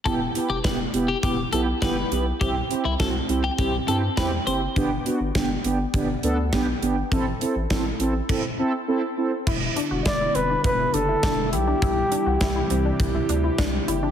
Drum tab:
CC |--------|--------|--------|----x---|
HH |xxxxxxxx|xxxxxxxx|xxxxxxxx|xxxx----|
SD |--o---o-|--o---o-|--o---o-|--o-----|
BD |o-o-o-o-|o-o-o-o-|o-o-o-o-|o-o-o---|

CC |x-------|--------|
HH |-xxxxxxx|xxxxxxxx|
SD |--o---o-|--o---o-|
BD |o-o-o-o-|o-o-o-o-|